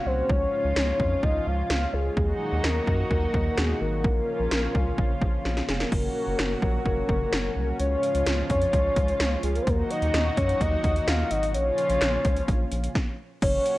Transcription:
0.00 0.28 A#2 medium
0.00 2.13 C#3 medium
0.00 0.28 F#3 medium
0.00 2.13 C#4 medium
0.00 0.28 F#4 medium
0.06 0.22 C2 medium
0.06 0.31 C5 loud
0.29 0.46 C#2 loud
0.29 2.15 G#2 medium
0.29 2.15 F3 medium
0.29 2.15 F4 medium
0.29 0.76 C#5 loud
0.29 kick loud
0.65 0.73 C#2 loud
0.76 0.93 C#2 loud
0.76 1.25 C#5 loud
0.76 snare loud
1.00 1.16 F2 medium
1.00 kick medium
1.23 1.40 C#2 loud
1.23 1.48 D#5 loud
1.23 kick medium
1.47 1.63 C#2 loud
1.47 1.95 F5 loud
1.70 1.87 C#2 loud
1.70 snare loud
1.93 2.10 C#2 medium
1.93 2.65 G#4 loud
2.17 2.33 D#2 loud
2.17 5.88 A#2 medium
2.17 4.03 D#3 medium
2.17 4.03 F#3 medium
2.17 4.03 D#4 medium
2.17 4.03 F#4 medium
2.17 kick loud
2.52 2.60 D#2 loud
2.64 2.80 D#2 medium
2.64 3.10 A#4 loud
2.64 snare loud
2.87 3.04 F#2 medium
2.87 kick medium
3.11 3.27 D#2 loud
3.11 3.52 A#4 loud
3.11 kick medium
3.34 3.50 D#2 loud
3.34 kick medium
3.52 3.59 A#4 medium
3.58 3.74 D#2 loud
3.58 3.81 G#4 medium
3.58 snare loud
3.81 4.06 G#1 medium
3.81 5.41 A#4 loud
4.04 4.21 A#1 loud
4.04 5.90 C#3 medium
4.04 5.90 F3 medium
4.04 5.90 C#4 medium
4.04 5.90 F4 medium
4.04 kick loud
4.40 4.48 A#1 loud
4.51 4.68 A#1 loud
4.51 snare loud
4.75 4.91 C#2 medium
4.75 kick loud
4.98 5.15 A#1 loud
4.98 kick medium
5.21 5.38 A#1 loud
5.21 kick medium
5.45 5.62 A#1 loud
5.45 snare medium
5.57 snare medium
5.69 5.85 F1 medium
5.69 5.74 G#4 medium
5.69 snare medium
5.80 6.82 A#4 medium
5.80 snare medium
5.92 6.08 F#1 loud
5.92 7.78 A#2 medium
5.92 9.63 C#3 medium
5.92 7.78 F#3 medium
5.92 9.63 C#4 medium
5.92 7.78 F#4 medium
5.92 kick loud
5.92 crash medium
6.27 6.35 F#1 medium
6.39 6.55 F#1 medium
6.39 snare loud
6.62 6.79 A#1 medium
6.62 kick medium
6.86 7.02 F#1 loud
6.86 7.76 A#4 loud
6.86 kick medium
7.09 7.25 F#1 medium
7.09 kick medium
7.33 7.49 F#1 loud
7.33 snare loud
7.56 7.73 C2 medium
7.79 7.96 C#2 loud
7.79 9.65 G#2 medium
7.79 9.65 F3 medium
7.79 9.65 F4 medium
7.79 8.46 C#5 loud
7.79 closed hi-hat medium
8.03 closed hi-hat medium
8.15 8.23 C#2 loud
8.15 closed hi-hat soft
8.26 8.43 C#2 loud
8.26 snare loud
8.26 closed hi-hat medium
8.50 8.66 F2 medium
8.50 9.40 C#5 loud
8.50 kick medium
8.50 closed hi-hat medium
8.62 closed hi-hat medium
8.73 8.90 C#2 loud
8.73 kick medium
8.73 closed hi-hat medium
8.96 9.13 C#2 loud
8.96 kick medium
8.96 closed hi-hat medium
9.08 closed hi-hat soft
9.20 9.37 C#2 loud
9.20 snare loud
9.20 closed hi-hat medium
9.43 9.60 C#2 medium
9.43 9.57 G#4 medium
9.43 closed hi-hat medium
9.55 9.64 A#4 loud
9.55 closed hi-hat soft
9.62 9.71 C5 medium
9.67 9.83 D#2 loud
9.67 11.53 A#2 medium
9.67 11.53 D#3 medium
9.67 11.53 F#3 medium
9.67 11.53 D#4 medium
9.67 11.53 F#4 medium
9.67 9.92 A#4 loud
9.67 kick loud
9.67 closed hi-hat medium
9.90 10.37 D#5 loud
9.90 closed hi-hat medium
10.02 10.10 D#2 loud
10.02 closed hi-hat medium
10.14 10.30 D#2 loud
10.14 snare loud
10.14 closed hi-hat medium
10.37 10.54 F#2 medium
10.37 10.62 C#5 loud
10.37 kick loud
10.37 closed hi-hat medium
10.49 closed hi-hat medium
10.61 10.77 D#2 loud
10.61 11.09 D#5 loud
10.61 kick medium
10.61 closed hi-hat medium
10.84 11.01 D#2 loud
10.84 kick loud
10.84 closed hi-hat medium
10.96 closed hi-hat soft
11.07 11.24 D#2 loud
11.07 11.32 F5 loud
11.07 snare loud
11.07 closed hi-hat medium
11.31 11.56 G#1 loud
11.31 11.54 D#5 loud
11.31 closed hi-hat medium
11.43 closed hi-hat soft
11.54 11.71 A#1 loud
11.54 12.94 A#2 medium
11.54 12.94 C#3 medium
11.54 12.94 F3 medium
11.54 12.94 C#4 medium
11.54 12.94 F4 medium
11.54 12.91 C#5 loud
11.54 closed hi-hat medium
11.78 closed hi-hat medium
11.90 11.98 A#1 loud
11.90 closed hi-hat medium
12.01 12.18 A#1 loud
12.01 snare loud
12.01 clap medium
12.01 closed hi-hat medium
12.25 12.41 C#2 medium
12.25 kick loud
12.25 closed hi-hat medium
12.36 closed hi-hat medium
12.48 12.65 A#1 loud
12.48 kick medium
12.48 closed hi-hat medium
12.71 12.88 A#1 loud
12.71 closed hi-hat medium
12.84 closed hi-hat soft
12.95 kick loud
12.95 snare medium
13.42 13.58 F#1 loud
13.42 13.78 A#2 medium
13.42 13.78 C#3 medium
13.42 13.78 F#3 medium
13.42 13.78 C#4 medium
13.42 13.78 F#4 medium
13.42 13.78 C#5 loud
13.42 kick loud
13.42 closed hi-hat medium
13.42 crash loud
13.65 closed hi-hat medium

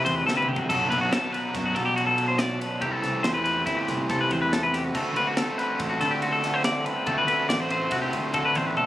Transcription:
0.00 0.67 C3 medium
0.00 0.68 E3 medium
0.00 0.70 A3 loud
0.00 0.68 C4 loud
0.00 0.68 E4 loud
0.05 0.25 E2 medium
0.05 0.16 C5 medium
0.05 kick medium
0.05 ride medium
0.16 0.26 B4 medium
0.26 0.46 D2 medium
0.26 0.37 A4 medium
0.26 snare medium
0.37 0.48 B4 medium
0.42 mid tom medium
0.48 0.67 C2 medium
0.48 0.58 G4 medium
0.56 0.69 F#4 medium
0.56 floor tom loud
0.69 0.90 B1 medium
0.69 2.81 B2 loud
0.69 2.81 F#3 loud
0.69 2.82 B3 loud
0.69 2.82 D4 medium
0.69 2.82 F#4 loud
0.69 0.90 A4 medium
0.69 kick loud
0.69 crash loud
0.90 1.10 B1 loud
0.90 1.01 B4 medium
0.90 ride medium
1.01 1.12 F#4 medium
1.12 1.32 A4 medium
1.12 snare loud
1.12 ride loud
1.32 1.54 B4 medium
1.32 ride medium
1.55 1.74 F#2 medium
1.55 kick loud
1.55 snare soft
1.55 ride loud
1.66 1.75 F#4 medium
1.75 2.57 B2 medium
1.75 1.85 A4 medium
1.75 kick medium
1.75 ride medium
1.85 1.96 G4 medium
1.96 2.06 F#4 medium
1.96 ride loud
2.07 2.27 A4 medium
2.18 ride medium
2.28 2.38 C5 medium
2.38 2.60 D5 medium
2.38 snare loud
2.38 ride loud
2.60 2.82 B4 medium
2.60 ride medium
2.81 3.02 C2 medium
2.81 4.93 C3 medium
2.81 4.94 E3 loud
2.81 4.94 A3 loud
2.81 4.95 C4 loud
2.81 4.94 E4 loud
2.81 2.91 G4 medium
2.81 kick loud
2.81 ride loud
2.91 3.01 A4 medium
3.02 3.23 C2 medium
3.02 3.24 A4 medium
3.02 snare soft
3.02 ride medium
3.23 3.64 E2 loud
3.23 3.34 C5 medium
3.23 snare loud
3.23 ride loud
3.34 3.43 B4 medium
3.44 3.65 B4 medium
3.44 ride medium
3.66 3.87 G1 medium
3.66 3.77 E4 medium
3.66 kick loud
3.66 snare soft
3.66 ride loud
3.77 3.99 G4 medium
3.88 4.08 C2 medium
3.88 kick medium
3.88 snare soft
3.88 ride medium
4.10 4.30 C3 medium
4.10 4.21 A4 medium
4.10 kick loud
4.10 snare soft
4.10 ride loud
4.21 4.31 B4 medium
4.31 4.91 E2 medium
4.31 4.41 C5 medium
4.31 kick medium
4.31 ride medium
4.42 4.52 B4 medium
4.53 4.63 A4 medium
4.53 snare loud
4.53 ride loud
4.63 4.74 B4 medium
4.74 4.84 G4 medium
4.74 snare soft
4.74 ride medium
4.84 4.95 F#4 medium
4.94 5.15 D2 medium
4.94 7.05 D3 loud
4.94 7.06 A3 loud
4.94 7.06 C4 loud
4.94 7.09 F#4 loud
4.94 5.16 A4 medium
4.94 kick loud
4.94 crash loud
5.15 5.36 D2 loud
5.15 5.27 B4 medium
5.15 ride medium
5.27 5.37 F#4 medium
5.37 5.58 A4 medium
5.37 snare loud
5.37 ride loud
5.58 5.80 B4 medium
5.58 snare soft
5.58 ride medium
5.80 6.00 A1 medium
5.80 kick loud
5.80 ride loud
5.90 6.01 F#4 medium
6.01 6.82 D3 loud
6.01 6.11 A4 medium
6.01 kick medium
6.01 snare soft
6.01 ride medium
6.11 6.22 G4 medium
6.22 6.33 F#4 medium
6.22 ride loud
6.33 6.54 A4 medium
6.44 snare soft
6.44 ride medium
6.54 6.64 C5 medium
6.64 6.85 D5 medium
6.64 snare loud
6.64 ride loud
6.85 7.07 B4 medium
6.85 ride medium
7.06 7.27 D2 medium
7.06 8.86 D3 loud
7.06 8.86 A3 loud
7.06 8.86 C4 medium
7.06 8.86 F#4 loud
7.06 7.17 A4 medium
7.06 kick loud
7.06 ride medium
7.18 7.27 B4 medium
7.27 7.47 D2 medium
7.27 7.48 B4 medium
7.27 ride medium
7.49 7.89 A1 loud
7.49 7.60 D5 medium
7.49 snare loud
7.49 ride loud
7.60 7.70 C5 medium
7.70 7.92 C5 medium
7.70 ride medium
7.91 8.12 C2 medium
7.91 8.01 F#4 medium
7.91 kick loud
7.91 ride loud
8.02 8.23 G4 medium
8.13 8.33 D2 medium
8.13 kick medium
8.13 ride medium
8.34 8.54 D3 medium
8.34 8.45 A4 medium
8.34 kick loud
8.34 ride loud
8.45 8.56 B4 medium
8.55 8.76 A1 medium
8.55 8.66 C5 medium
8.55 kick medium
8.55 ride medium
8.66 8.77 B4 medium
8.77 8.86 B1 medium
8.77 8.86 A4 medium
8.77 kick medium

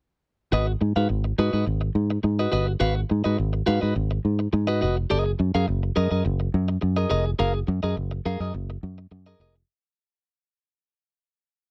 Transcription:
0.52 0.74 G#1 loud
0.52 0.71 F#4 medium
0.52 0.67 B4 medium
0.52 0.66 D#5 loud
0.67 muted clean electric guitar stroke soft
0.81 0.93 G#2 medium
0.81 muted clean electric guitar stroke soft
0.96 1.06 G#2 medium
0.96 1.08 F#4 soft
0.96 1.08 B4 medium
0.96 1.09 F5 medium
1.09 1.32 G#1 medium
1.09 muted clean electric guitar stroke soft
1.24 muted clean electric guitar stroke soft
1.38 1.50 G#2 medium
1.38 1.53 F#4 medium
1.38 1.52 B4 medium
1.38 1.52 D#5 medium
1.53 1.64 G#2 medium
1.53 1.65 F#4 medium
1.53 1.65 B4 medium
1.53 1.65 D#5 medium
1.66 1.89 G#1 loud
1.66 muted clean electric guitar stroke soft
1.81 muted clean electric guitar stroke soft
1.95 2.17 G#2 loud
2.10 muted clean electric guitar stroke medium
2.23 2.46 G#2 loud
2.23 muted clean electric guitar stroke soft
2.39 2.50 F#4 soft
2.39 2.51 B4 soft
2.39 2.52 D#5 medium
2.52 2.75 G1 medium
2.52 2.71 F#4 medium
2.52 2.67 B4 medium
2.52 2.66 D#5 loud
2.67 muted clean electric guitar stroke soft
2.80 3.03 G#1 loud
2.80 3.00 F#4 medium
2.80 2.95 B4 medium
2.80 2.95 F5 loud
2.95 muted clean electric guitar stroke soft
3.10 3.22 G#2 loud
3.10 muted clean electric guitar stroke soft
3.24 3.36 G#2 medium
3.24 3.37 F#4 medium
3.24 3.37 B4 medium
3.24 3.37 D#5 medium
3.38 3.61 G#1 medium
3.38 muted clean electric guitar stroke soft
3.53 muted clean electric guitar stroke soft
3.66 3.79 G#2 loud
3.66 3.82 F#4 medium
3.66 3.81 B4 medium
3.66 3.81 F5 medium
3.81 3.93 G#2 medium
3.81 3.94 F#4 medium
3.81 3.94 B4 medium
3.81 3.95 D#5 medium
3.95 4.18 G#1 loud
3.95 muted clean electric guitar stroke soft
4.11 muted clean electric guitar stroke soft
4.25 4.47 G#2 medium
4.39 muted clean electric guitar stroke soft
4.53 4.84 G#2 medium
4.53 muted clean electric guitar stroke medium
4.67 4.80 F#4 medium
4.67 4.81 B4 medium
4.67 4.81 D#5 medium
4.81 5.04 F1 medium
4.81 4.97 F#4 medium
4.81 4.96 B4 medium
4.81 4.96 D#5 medium
4.97 muted clean electric guitar stroke soft
5.10 5.33 F#1 medium
5.10 5.30 G#4 loud
5.10 5.25 A#4 medium
5.10 5.24 D#5 loud
5.25 muted clean electric guitar stroke soft
5.39 5.51 F#2 loud
5.39 muted clean electric guitar stroke soft
5.55 5.65 F#2 medium
5.55 5.66 G#4 medium
5.55 5.66 A#4 medium
5.55 5.67 F5 medium
5.67 5.90 F#1 loud
5.67 muted clean electric guitar stroke soft
5.83 muted clean electric guitar stroke soft
5.96 6.08 F#2 medium
5.96 6.10 G#4 medium
5.96 6.10 A#4 medium
5.96 6.09 D#5 medium
6.11 6.22 F#2 medium
6.11 6.23 G#4 medium
6.11 6.24 A#4 medium
6.11 6.24 D#5 medium
6.25 6.47 F#1 loud
6.25 muted clean electric guitar stroke soft
6.40 muted clean electric guitar stroke soft
6.54 6.76 F#2 loud
6.68 muted clean electric guitar stroke soft
6.81 7.05 F#2 medium
6.81 muted clean electric guitar stroke soft
6.96 7.08 G#4 soft
6.96 7.09 A#4 medium
6.96 7.10 D#5 medium
7.10 7.33 F1 medium
7.10 7.30 G#4 medium
7.10 7.25 A#4 medium
7.10 7.24 D#5 loud
7.26 muted clean electric guitar stroke soft
7.39 7.62 F#1 medium
7.39 7.58 G#4 medium
7.39 7.54 A#4 loud
7.39 7.54 F5 loud
7.54 muted clean electric guitar stroke soft
7.67 7.80 F#2 loud
7.67 muted clean electric guitar stroke soft
7.83 7.94 F#2 loud
7.83 7.96 G#4 medium
7.83 7.96 A#4 medium
7.83 7.96 D#5 medium
7.97 8.19 F#1 medium
7.97 muted clean electric guitar stroke soft
8.11 muted clean electric guitar stroke medium
8.25 8.37 F#2 loud
8.25 8.41 G#4 medium
8.25 8.40 A#4 medium
8.25 8.40 F5 medium
8.40 8.51 F#2 medium
8.40 8.53 G#4 soft
8.40 8.54 A#4 soft
8.40 8.54 D#5 medium
8.54 8.76 F#1 loud
8.54 muted clean electric guitar stroke soft
8.70 muted clean electric guitar stroke soft
8.83 9.05 F#2 medium
8.98 muted clean electric guitar stroke soft
9.11 9.34 F#2 medium
9.11 muted clean electric guitar stroke soft
9.26 9.39 G#4 medium
9.26 9.40 A#4 medium
9.26 9.40 D#5 medium
9.40 9.62 F1 medium
9.40 9.56 G#4 medium
9.40 9.55 A#4 medium
9.40 9.54 D#5 medium
9.56 muted clean electric guitar stroke soft

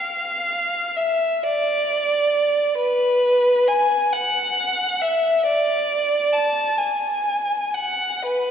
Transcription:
0.00 0.99 F5 medium
0.97 1.43 E5 medium
1.43 2.78 D5 medium
2.77 3.67 B4 loud
3.68 4.13 G#5 medium
4.13 5.03 F#5 medium
5.01 5.47 E5 medium
5.46 6.31 D5 medium
6.33 6.78 A5 medium
6.78 7.75 G#5 medium
7.74 8.26 F#5 medium
8.25 8.51 B4 medium

